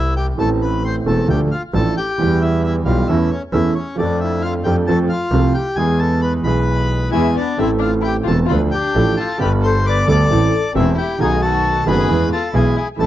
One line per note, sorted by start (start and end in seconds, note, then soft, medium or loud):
0.00 0.28 C2 medium
0.00 0.28 C3 medium
0.00 0.27 E3 medium
0.00 0.28 B3 medium
0.00 0.28 C4 medium
0.00 0.14 E4 medium
0.00 0.29 G4 medium
0.00 0.14 E5 medium
0.16 0.27 G4 medium
0.16 0.26 G5 medium
0.36 1.02 A1 medium
0.36 1.02 A2 medium
0.36 1.01 E3 medium
0.36 1.02 A3 medium
0.36 1.03 C4 medium
0.36 0.49 A5 medium
0.40 1.03 A4 medium
0.40 0.50 A4 medium
0.62 0.83 B4 medium
0.62 0.84 B5 medium
0.85 0.96 C5 medium
0.85 0.94 C6 medium
1.06 1.25 E1 medium
1.06 1.25 E2 medium
1.06 1.25 E3 medium
1.06 1.25 A3 medium
1.06 1.25 C4 medium
1.06 1.25 A4 medium
1.06 1.28 A4 soft
1.06 1.28 A5 medium
1.28 1.47 D2 medium
1.28 1.47 D3 medium
1.28 1.47 F3 medium
1.28 1.47 A3 medium
1.28 1.47 D4 medium
1.28 1.41 G4 medium
1.28 1.47 A4 medium
1.28 1.39 G5 medium
1.51 1.63 F4 medium
1.51 1.61 F5 medium
1.73 1.92 A1 medium
1.73 1.92 A2 medium
1.73 1.92 F3 medium
1.73 1.92 A3 medium
1.73 1.92 D4 medium
1.73 1.93 A4 medium
1.73 1.96 A4 medium
1.73 1.95 A5 medium
1.97 2.39 G4 medium
1.97 2.43 G5 medium
2.18 2.82 E2 medium
2.18 2.83 E2 medium
2.18 2.83 E3 medium
2.18 2.82 G3 medium
2.18 2.83 B3 medium
2.18 2.84 G4 medium
2.42 2.63 E4 medium
2.42 2.62 E5 medium
2.64 2.76 E4 medium
2.64 2.74 E5 medium
2.85 3.04 B1 medium
2.85 3.05 B1 medium
2.85 3.05 B2 medium
2.85 3.05 E3 medium
2.85 3.05 G3 medium
2.85 3.05 B3 medium
2.85 3.07 F4 medium
2.85 3.05 G4 medium
2.85 3.08 F5 medium
3.07 3.27 E2 medium
3.07 3.27 E3 medium
3.07 3.27 A3 medium
3.07 3.27 C#4 medium
3.07 3.30 E4 medium
3.07 3.28 A4 medium
3.07 3.31 E5 medium
3.31 3.42 C#4 medium
3.31 3.41 C#5 medium
3.52 3.72 E2 medium
3.52 3.72 E3 medium
3.52 3.72 A3 medium
3.52 3.72 C#4 medium
3.52 3.75 E4 medium
3.52 3.72 A4 medium
3.52 3.74 E5 medium
3.75 3.97 C#4 medium
3.75 3.96 C#5 medium
3.96 4.61 F2 medium
3.96 3.97 F3 medium
3.96 4.62 F3 medium
3.96 4.61 A3 medium
3.96 4.62 D4 medium
3.96 4.19 D5 medium
4.00 4.20 D4 medium
4.00 4.63 A4 medium
4.20 4.43 E4 medium
4.20 4.41 E5 medium
4.42 4.54 F4 medium
4.42 4.52 F5 medium
4.64 4.83 F2 medium
4.64 4.84 F2 medium
4.64 4.84 F3 medium
4.64 4.84 A3 medium
4.64 4.84 D4 medium
4.64 4.76 G4 medium
4.64 4.84 A4 medium
4.64 4.74 G5 medium
4.87 5.06 F2 medium
4.87 5.07 F2 medium
4.87 5.07 F3 medium
4.87 5.07 A3 medium
4.87 5.07 C4 medium
4.87 5.07 A4 medium
4.87 4.99 A4 medium
4.87 4.97 A5 medium
5.09 5.53 F4 medium
5.09 5.56 F5 medium
5.31 5.51 C2 medium
5.31 5.52 C2 medium
5.31 5.52 C3 medium
5.31 5.52 F3 medium
5.31 5.52 A3 medium
5.31 5.52 C4 medium
5.31 5.52 A4 medium
5.54 5.77 G4 medium
5.54 5.75 G5 medium
5.76 6.41 E2 medium
5.76 6.42 E2 medium
5.76 6.42 E3 medium
5.76 6.41 G#3 medium
5.76 6.42 B3 medium
5.76 5.99 G#4 medium
5.76 6.43 G#4 medium
5.76 6.00 G#5 medium
5.99 6.22 A4 medium
5.99 6.20 A5 medium
6.22 6.33 B4 medium
6.22 6.32 B5 medium
6.43 7.09 B1 medium
6.43 7.10 B1 medium
6.43 7.10 B2 medium
6.43 7.09 E3 medium
6.43 7.09 G#3 soft
6.43 7.10 B3 medium
6.43 7.09 B5 medium
6.47 7.11 G#4 medium
6.47 7.10 B4 medium
7.11 7.32 E2 medium
7.11 7.33 E2 medium
7.11 7.32 E3 medium
7.11 7.32 G#3 medium
7.11 7.32 B3 medium
7.11 7.33 E4 medium
7.11 7.32 G#4 medium
7.11 7.35 G#4 medium
7.11 7.36 G#5 medium
7.34 7.56 B3 medium
7.34 7.58 D5 medium
7.39 7.59 D4 medium
7.57 8.24 A1 medium
7.57 8.24 A2 medium
7.57 8.23 E3 medium
7.57 8.23 A3 medium
7.57 7.68 C4 medium
7.57 8.24 C4 medium
7.57 7.69 E5 medium
7.61 7.71 E4 medium
7.61 8.25 A4 medium
7.79 7.90 D4 medium
7.79 7.91 F5 medium
7.84 7.94 F4 medium
8.02 8.12 E4 medium
8.02 8.14 G5 medium
8.07 8.17 G4 medium
8.24 8.46 E1 medium
8.24 8.46 E2 medium
8.24 8.46 E3 medium
8.24 8.46 A3 soft
8.24 8.47 C4 soft
8.24 8.35 F4 medium
8.24 8.47 A4 medium
8.24 8.37 A5 medium
8.30 8.40 A4 medium
8.47 8.69 D2 medium
8.47 8.69 D3 medium
8.47 8.69 F3 medium
8.47 8.69 A3 medium
8.47 8.69 D4 medium
8.47 8.58 F4 medium
8.47 8.69 A4 medium
8.47 8.59 B5 medium
8.52 8.61 B4 medium
8.71 9.14 D4 medium
8.71 9.15 G4 medium
8.71 9.18 G5 loud
8.95 9.14 A1 medium
8.95 9.14 A2 medium
8.95 9.14 F3 medium
8.95 9.14 A3 medium
8.95 9.14 D4 medium
8.95 9.15 A4 medium
9.16 9.38 F4 medium
9.16 9.39 A4 medium
9.16 9.38 A5 medium
9.38 10.04 G1 medium
9.38 10.04 G2 medium
9.38 10.03 G3 medium
9.38 10.04 B3 medium
9.38 10.04 D4 medium
9.38 9.49 G4 medium
9.38 9.51 B5 medium
9.42 10.05 A4 medium
9.42 9.52 B4 medium
9.61 9.82 A4 medium
9.61 9.86 C6 medium
9.66 9.85 C5 medium
9.83 10.05 B4 medium
9.83 10.07 D6 loud
9.89 10.08 D5 medium
10.06 10.26 D2 medium
10.06 10.27 D2 medium
10.06 10.27 D3 medium
10.06 10.27 G3 medium
10.06 10.26 B3 medium
10.06 10.27 D4 medium
10.06 10.70 A4 medium
10.06 10.27 A4 medium
10.06 10.71 D6 loud
10.11 10.73 D5 medium
10.30 10.49 A1 medium
10.30 10.49 A2 medium
10.30 10.49 E3 medium
10.30 10.49 A3 medium
10.30 10.49 C4 medium
10.30 10.50 A4 medium
10.74 10.94 E1 medium
10.74 10.94 E2 medium
10.74 10.94 E3 medium
10.74 10.94 A3 medium
10.74 10.95 C4 medium
10.74 10.94 C4 medium
10.74 10.94 A4 medium
10.74 10.96 E5 medium
10.78 10.98 E4 medium
10.96 11.18 E4 medium
10.96 11.20 G4 medium
10.96 11.18 G5 medium
11.18 11.83 B1 medium
11.18 11.84 B1 medium
11.18 11.83 B2 medium
11.18 11.83 D#3 medium
11.18 11.83 A3 medium
11.18 11.84 B3 medium
11.18 11.40 D#4 medium
11.18 11.42 G#4 medium
11.18 11.41 G#5 medium
11.22 11.85 F#4 medium
11.42 11.83 F#4 medium
11.42 11.84 A4 medium
11.42 11.88 A5 medium
11.86 12.06 F#1 medium
11.86 12.06 F#2 medium
11.86 12.05 D#3 medium
11.86 12.06 A3 medium
11.86 12.06 B3 medium
11.86 12.06 F#4 medium
11.86 12.28 G#4 medium
11.86 12.30 B4 medium
11.86 12.29 B5 medium
12.08 12.28 E2 medium
12.08 12.28 E3 medium
12.08 12.28 G#3 medium
12.08 12.28 B3 medium
12.08 12.28 G#4 medium
12.31 12.52 F4 medium
12.31 12.54 A4 medium
12.31 12.55 A5 medium
12.52 12.73 B1 medium
12.52 12.73 B2 medium
12.52 12.73 E3 medium
12.52 12.73 G#3 medium
12.52 12.73 B3 medium
12.52 12.74 E4 medium
12.52 12.73 G#4 medium
12.52 12.76 G#5 medium
12.57 12.76 G#4 medium
12.75 12.86 E4 medium
12.75 12.89 G#4 medium
12.75 12.87 G#5 medium
12.96 13.06 A1 medium
12.96 13.06 A2 medium
12.96 13.06 E3 medium
12.96 13.06 A3 medium
12.96 13.06 C4 medium
12.96 13.06 E4 medium
12.96 13.06 A5 loud
13.01 13.06 A4 medium